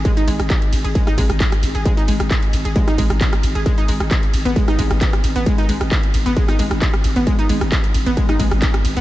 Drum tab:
RD |--x---x---x---x-|--x---x---x---x-|--x---x---x---x-|--x---x---x---x-|
HH |xxoxxxoxxxoxxxox|xxoxxxoxxxoxxxox|xxoxxxoxxxoxxxox|xxoxxxoxxxoxxxox|
CP |----x-------x---|----x-------x---|----x-------x---|----x-------x---|
SD |---r-----r-r-r--|---r-----r-r-r--|---r-----r-r-r--|---r-----r-r-r--|
BD |o---o---o-o-o---|o---o---o-o-o---|o---o---o-o-o---|o---o---o---o---|

RD |--x---x---x---x-|
HH |xxoxxxoxxxoxxxox|
CP |----x-------x---|
SD |---r-----r-r-r--|
BD |o---o---o-o-o---|